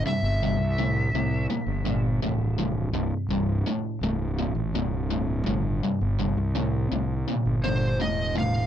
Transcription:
<<
  \new Staff \with { instrumentName = "Electric slide guitar" } { \time 4/4 \key c \major \tempo 4 = 83 e''2 r2 | r1 | r2 r8 c''8 ees''8 f''8 | }
  \new Staff \with { instrumentName = "Distorted electric guitar" } { \clef bass \time 4/4 \key c \major <c, g,>8 <c, g,>8 <c, a,>8 <c, a,>8 <c, bes,>8 <c, bes,>8 <c, a,>8 <c, a,>8 | <c, g,>8 <c, g,>8 <c, a,>8 <c, a,>8 <c, bes,>8 <c, bes,>8 <c, a,>8 <c, a,>8 | <c, g,>8 <c, g,>8 <c, a,>8 <c, a,>8 <c, bes,>8 <c, bes,>8 <c, a,>8 <c, a,>8 | }
  \new Staff \with { instrumentName = "Fingered electric bass" } { \clef bass \time 4/4 \key c \major r16 g,,8 c,8. c,8 r16 g,,8. c,,4 | c,,16 r16 c,,8 r8 c,,8. a,,16 c,,4 g,,8 | r16 g,,8 c,8. c,8 r16 g,,8. e,,4 | }
>>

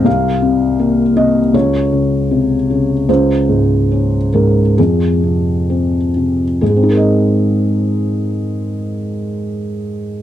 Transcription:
<<
  \new Staff \with { instrumentName = "Felt piano" } { \time 4/4 \key aes \major \tempo 4 = 67 f''4. ees''8 des''2 | c''4. bes'8 aes'4. r8 | <aes, aes c' ees' aes' bes' ees''>1 | }
  \new Staff \with { instrumentName = "Felt piano" } { \clef bass \time 4/4 \key aes \major c,8 c8 bes8 c8 des,8 des8 c8 des8 | des,8 aes,8 des'8 aes,8 f,8 c8 c'8 c8 | r1 | }
>>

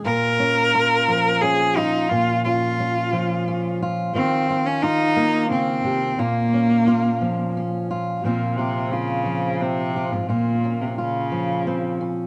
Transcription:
<<
  \new Staff \with { instrumentName = "Steel-string acoustic guitar" } { \time 3/4 \key bes \minor \tempo 4 = 88 << { f'8 des'8 f'4 des'8 f'8 | des'8 des'8 des'4 des'8 f'8 | f'8 f'8 f'2 | f'8 des'8 f'4 des'8 f'8 |
<f c' f'>8 f'8 f'4 c'8 f'8 | f'8 des'8 f'4 c'8 des'8 | } \\ { bes,4. f4. | bes,4. f4. | ees4. bes8 des8 c8 | bes,4. f4. |
bes,4. f4. | bes,4. f4. | } >> }
  \new Staff \with { instrumentName = "Cello" } { \time 3/4 \key bes \minor bes'2 aes'8 ees'8 | f'8 f'2 r8 | c'8. des'16 ees'4 c'4 | bes2 r4 |
bes,8 c8 des4 c8. aes,16 | bes,8. c16 des4. r8 | }
>>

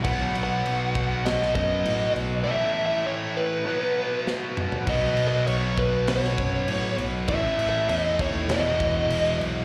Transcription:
<<
  \new Staff \with { instrumentName = "Lead electric guitar" } { \time 4/4 \key b \mixolydian \tempo 4 = 99 \tuplet 3/2 { fis''4 fis''8~ } fis''4 dis''8 dis''4 r8 | \tuplet 3/2 { e''4 e''8 } cis''8 b'4. r4 | \tuplet 3/2 { dis''4 dis''8 } cis''8 b'8 cis''4. r8 | \tuplet 3/2 { e''4 e''8 } dis''8 cis''8 dis''4. r8 | }
  \new Staff \with { instrumentName = "Distorted electric guitar" } { \clef bass \time 4/4 \key b \mixolydian <b, fis b>1 | <a, e a>2 <b, fis b>2 | <b, fis b>1 | <a, e a>2 <e, b, e>2 | }
  \new Staff \with { instrumentName = "Picked electric bass" } { \clef bass \time 4/4 \key b \mixolydian b,,8 b,,8 b,,8 b,,8 b,,8 fis,8 a,8 b,,8 | r1 | b,,8 b,,8 b,,8 b,,8 b,,8 fis,8 a,8 b,,8 | a,,8 a,,8 e,8 dis,8 e,,8 e,,8 e,,8 b,,8 | }
  \new DrumStaff \with { instrumentName = "Drums" } \drummode { \time 4/4 <cymc bd>8 cymc8 cymc8 <cymc bd>8 <cymc sn>16 sn16 <cymc bd>8 cymc8 cymc8 | r4 r4 r4 sn8 toml16 tomfh16 | <cymc bd>8 cymc8 cymc8 <cymc bd>8 <cymc sn>16 sn16 <cymc bd>8 cymc8 cymc8 | <cymc bd>8 cymc8 cymc8 <cymc bd>8 <cymc sn>8 <cymc bd>8 cymc8 cymc8 | }
>>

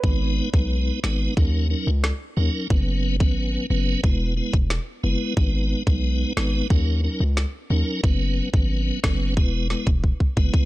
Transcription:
<<
  \new Staff \with { instrumentName = "Tonewheel organ" } { \time 4/4 \key gis \minor \tempo 4 = 90 <gis b dis' b'>8. <gis b dis' b'>8. <gis b dis' b'>8 <fis cis' dis' ais'>8 <fis cis' dis' ais'>16 r8. <fis cis' dis' ais'>8 | <fis b cis' b'>8. <fis b cis' b'>8. <fis b cis' b'>8 <gis b e' b'>8 <gis b e' b'>16 r8. <gis b e' b'>8 | <gis b dis' b'>8. <gis b dis' b'>8. <gis b dis' b'>8 <fis cis' dis' ais'>8 <fis cis' dis' ais'>16 r8. <fis cis' dis' ais'>8 | <fis b cis' b'>8. <fis b cis' b'>8. <fis b cis' b'>8 <gis b e' b'>8 <gis b e' b'>16 r8. <gis b e' b'>8 | }
  \new Staff \with { instrumentName = "808-style bass" } { \clef bass \time 4/4 \key gis \minor gis,,8. b,,8. gis,,8 dis,8. cis,8 r16 dis,16 r16 | fis,,8. gis,,8. fis,,8 e,,8. e,,8 r16 fis,,16 r16 | gis,,8. b,,8. gis,,8 dis,8. cis,8 r16 dis,16 r16 | fis,,8. gis,,8. fis,,8 e,,8. e,,8 r16 fis,,16 r16 | }
  \new DrumStaff \with { instrumentName = "Drums" } \drummode { \time 4/4 bd8. bd16 r8 sn8 bd4 sn4 | bd8. bd16 r4 bd8. bd16 sn4 | bd8. bd16 r8 sn8 bd4 sn4 | bd8. bd16 r8 <bd sn>8 bd8 sn16 bd16 bd16 bd16 bd16 bd16 | }
>>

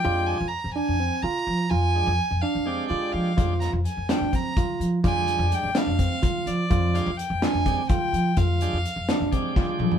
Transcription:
<<
  \new Staff \with { instrumentName = "Violin" } { \time 7/8 \key f \dorian \tempo 4 = 126 g''8 aes''8 bes''8 aes''4 bes''4 | aes''4. f''4 d''8 f''8~ | f''8 bes''8 aes''8 g''8 bes''4 r8 | aes''4 g''8 f''4. d''8~ |
d''8 f''8 g''8 aes''4 g''4 | f''2~ f''8 r4 | }
  \new Staff \with { instrumentName = "Tine electric piano" } { \time 7/8 \key f \dorian f'4 r8 d'8 c'8 f'4 | f'4 r8 d'8 c'8 f'4 | f'4 r8 d'8 c'8 f'4 | f'4 r8 d'8 c'8 f'4 |
f'4 r8 d'8 c'8 f'4 | f'4 r8 d'8 c'8 f'4 | }
  \new Staff \with { instrumentName = "Tonewheel organ" } { \time 7/8 \key f \dorian <aes d' g'>8 r2. | r8 <aes d' aes'>8 r4 <aes d' g'>4. | <aes d' g'>8 r2. | <g aes d'>4. r2 |
r8 <aes d' g'>8 r4 <aes d' g'>8 r4 | r8 <aes d' g'>8 r4 <aes d' g'>4. | }
  \new Staff \with { instrumentName = "Upright bass" } { \clef bass \time 7/8 \key f \dorian f,8. f,16 r16 f,16 r16 f,8 r16 d16 r16 f8 | f,8. f,16 r16 f,16 r16 f,8 r16 d16 r16 f8 | f,8. f,16 r16 f,16 r16 f,8 r16 d16 r16 f8 | f,8. f,16 r16 f,16 r16 f,8 r16 d16 r16 f8 |
f,8. f,16 r16 f,16 r16 f,8 r16 d16 r16 f8 | f,8. f,16 r16 f,16 r16 f,8 r16 d16 r16 f8 | }
  \new DrumStaff \with { instrumentName = "Drums" } \drummode { \time 7/8 r4. r4 r4 | r4. r4 r4 | <hh bd>8 <hh sn>8 hh8 <hh sn>8 <hh bd>8 <hh bd>8 hh8 | <hh bd>8 hh8 hh8 <hh sn>8 <hh bd>8 <hh bd>8 hh8 |
<hh bd>8 hh8 hh8 <hh sn>8 <hh bd>8 <hh bd>8 hh8 | <hh bd>8 hh8 hh8 <hh sn>8 <hh bd>8 <bd sn>8 toml16 tomfh16 | }
>>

